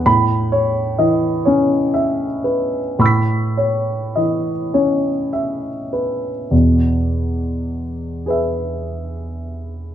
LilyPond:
<<
  \new Staff \with { instrumentName = "Grand piano" } { \time 6/8 \key e \major \tempo 4. = 35 << { b''4 r2 | <cis''' e''' b'''>2. | r4. <gis' b' e''>4. | } \\ { r8 cis''8 dis''8 cis''8 e''8 b'8 | b''8 cis''8 dis''8 cis''8 e''8 b'8 | r2. | } >> }
  \new Staff \with { instrumentName = "Grand piano" } { \clef bass \time 6/8 \key e \major a,4 e8 cis'4 r8 | a,4 e8 cis'4 r8 | <e, b,>2. | }
>>